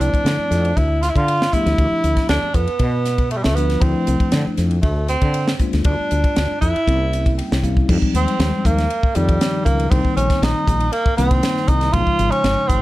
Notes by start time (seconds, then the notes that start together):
Already playing: F3 A3 C4 D4 E4
0.00 C2 D4, hi-hat pedal, ride
0.14 kick, ride
0.25 D3, snare, ride
0.38 muted fretless electric bass stroke
0.51 F2, snare, hi-hat pedal, ride
0.65 ride
0.77 D2 E4, kick, ride
1.02 F4, snare, hi-hat pedal, ride
1.09 E4
1.16 D3 F4, kick, ride
1.28 ride
1.42 snare
1.53 F3 A3 B3 D4 E4 G4, muted fretless electric bass stroke, kick, hi-hat pedal, ride
1.66 D2, snare, ride
1.78 D2, kick, ride
1.92 muted fretless electric bass stroke
2.04 D2, hi-hat pedal, ride
2.17 kick, snare, ride
2.29 D2 D4, snare, ride
2.54 F2 B3, kick, hi-hat pedal, ride
2.67 muted fretless electric bass stroke, ride
2.79 B2, kick, ride
3.05 snare, hi-hat pedal, ride
3.18 kick, ride
3.31 A3, ride
3.37 G3
3.43 D2 A3, snare
3.56 F3 A3 B3 D4 F4, hi-hat pedal, ride
3.70 snare, ride
3.81 D2 F3 A3 C4 D4 E4, kick, ride
4.07 C2, hi-hat pedal, ride
4.20 kick, ride
4.32 D3, snare, ride
4.47 muted fretless electric bass stroke
4.57 F2, snare, hi-hat pedal, ride
4.71 ride
4.82 D2 A3, kick, ride
5.08 C4, hi-hat pedal, ride
5.21 D3, kick, ride
5.34 ride
5.48 snare
5.59 G3 A3 B3 D4 F4, muted fretless electric bass stroke, kick, hi-hat pedal, ride
5.73 D2, snare, ride
5.84 D2 D4, kick, ride
6.00 muted fretless electric bass stroke
6.11 D2, hi-hat pedal, ride
6.24 kick, ride
6.36 D2, snare, ride
6.51 muted fretless electric bass stroke
6.61 F2 E4, kick, hi-hat pedal, ride
6.76 muted fretless electric bass stroke, ride
6.87 C2 G3 A#3 C4 C#4 E4, kick, ride
7.13 hi-hat pedal, ride
7.26 kick, ride
7.38 G5, ride
7.52 C2, snare
7.63 G3 A#3 C4 C#4 E4 F5, kick, hi-hat pedal
7.77 kick
7.88 F2 F3 G3 G#3 C4 D#4, kick, crash
8.02 muted fretless electric bass stroke, kick
8.14 D#2 C4, hi-hat pedal, ride
8.28 ride
8.39 D#2, snare, ride
8.65 D#2 A#3, kick, hi-hat pedal, ride
8.78 snare, ride
8.90 ride
9.03 kick
9.15 F2 D#3 F3 G3 C4 D#4, hi-hat pedal, ride
9.29 kick, ride
9.41 snare, ride
9.65 C#2 A#3, kick, hi-hat pedal, ride
9.79 ride
9.90 C2 D#3 G3 A#3 C4 D#4, kick, ride
10.05 kick
10.17 A#1 C#4, hi-hat pedal, ride
10.30 kick, snare, ride
10.42 A#1 D#4, snare, ride
10.67 A#1, kick, hi-hat pedal, ride
10.80 ride
10.93 A#3, ride
11.06 kick
11.17 C2 D#3 G3 A#3 C4 D#4, hi-hat pedal, ride
11.31 kick, ride
11.43 snare, ride
11.57 snare
11.68 C2 D#4, kick, hi-hat pedal, ride
11.81 snare, ride
11.93 A#1 C#3 F3 G#3 D#4 F4 C5, kick, ride
12.07 kick
12.19 G#1, hi-hat pedal, ride
12.31 C#4, ride
12.44 G#1, snare, ride
12.68 G#1 C4, kick, hi-hat pedal, ride